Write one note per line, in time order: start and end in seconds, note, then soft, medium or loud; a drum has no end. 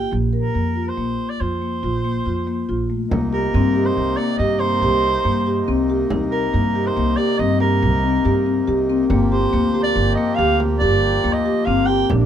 0.00 0.12 G5 medium
0.11 0.47 A#1 medium
0.11 0.30 A#3 medium
0.33 0.52 A#4 medium
0.33 0.90 A#4 medium
0.54 0.89 F2 medium
0.54 0.73 A#3 medium
0.76 0.94 F4 medium
0.88 1.31 C5 medium
0.97 1.15 A#1 medium
0.97 1.35 A#3 medium
1.30 1.42 D5 medium
1.41 1.85 F2 medium
1.41 1.59 F4 medium
1.41 2.90 C5 medium
1.62 1.80 A#3 medium
1.83 2.18 A#1 medium
1.83 2.01 F4 medium
2.04 2.23 A#3 medium
2.26 2.60 F2 medium
2.26 2.44 F4 medium
2.47 2.66 A#3 medium
2.69 3.03 A#1 medium
2.69 2.87 F4 medium
2.90 3.08 A3 medium
3.09 3.46 C2 medium
3.09 9.05 C3 medium
3.09 12.26 A#3 medium
3.09 3.30 A#3 medium
3.09 9.05 D#4 medium
3.09 frame drum medium
3.33 3.51 G4 medium
3.33 3.87 A#4 medium
3.54 3.89 G2 medium
3.54 3.73 C4 medium
3.76 4.13 G4 medium
3.85 4.18 C5 medium
3.97 4.14 C2 medium
4.17 4.37 A#3 medium
4.17 4.37 D5 medium
4.38 4.83 G2 medium
4.38 4.58 G4 medium
4.38 4.61 D#5 loud
4.59 4.80 A#3 medium
4.59 5.88 C5 medium
4.82 5.16 C2 medium
4.82 5.20 G4 medium
4.82 frame drum soft
5.25 5.59 G2 medium
5.25 5.44 A#3 medium
5.47 5.65 G4 medium
5.68 6.02 C2 medium
5.68 5.86 C4 medium
5.90 6.08 G4 medium
6.10 6.45 C2 medium
6.10 6.29 D#4 medium
6.10 frame drum medium
6.31 6.88 A#4 medium
6.31 6.51 A#4 medium
6.53 6.88 G2 medium
6.53 6.72 A#3 medium
6.75 6.93 G4 medium
6.87 7.19 C5 medium
6.96 7.14 C2 medium
6.96 7.15 A#3 medium
7.17 7.36 G4 medium
7.17 7.40 D5 medium
7.39 7.84 G2 medium
7.39 7.58 C4 medium
7.39 7.60 D#5 loud
7.60 7.97 G4 medium
7.60 8.85 A#4 medium
7.60 frame drum soft
7.82 8.17 C2 medium
7.82 frame drum soft
8.03 8.22 C4 medium
8.25 8.59 G2 medium
8.25 8.43 G4 medium
8.25 frame drum soft
8.46 8.65 C4 medium
8.67 9.02 C2 medium
8.67 8.86 G4 medium
8.89 9.08 C4 medium
9.09 9.44 G1 loud
9.09 12.06 F3 medium
9.09 9.29 A#3 medium
9.09 12.06 G4 medium
9.09 frame drum medium
9.31 9.50 G4 medium
9.31 9.81 C5 medium
9.53 9.88 D2 medium
9.53 9.72 A#3 medium
9.75 10.12 G4 medium
9.83 10.14 D5 medium
9.96 10.13 G1 medium
10.15 10.36 A#3 medium
10.15 10.37 D#5 medium
10.35 10.83 D2 medium
10.35 10.57 G4 medium
10.35 10.58 F5 loud
10.60 10.79 A#3 medium
10.60 frame drum soft
10.78 11.16 G1 medium
10.78 11.19 G4 medium
10.78 11.34 D5 medium
11.24 11.59 D2 medium
11.24 11.43 A#3 medium
11.33 11.67 D#5 medium
11.46 11.64 G4 medium
11.65 12.02 G1 medium
11.65 11.86 C4 medium
11.65 11.88 F5 medium
11.86 12.07 G4 medium
11.86 12.09 G5 loud
12.09 12.26 A#1 medium
12.09 12.26 C3 medium
12.09 12.26 D4 medium
12.09 frame drum medium